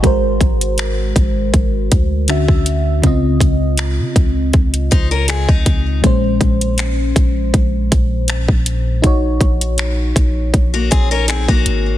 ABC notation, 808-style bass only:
X:1
M:4/4
L:1/16
Q:"Swing 16ths" 1/4=80
K:Bbm
V:1 name="808-style bass" clef=bass
A,,,2 A,,,4 A,,,2 A,,,2 =D,,3 D,,3 | D,,2 D,,3 D, D,,2 D,,2 D,,3 D,, D,,2 | B,,,2 B,,,4 B,,,2 B,,,2 B,,,3 B,,,3 | B,,,2 B,,,4 B,,,2 B,,,2 B,,,3 B,,, A,,,2 |]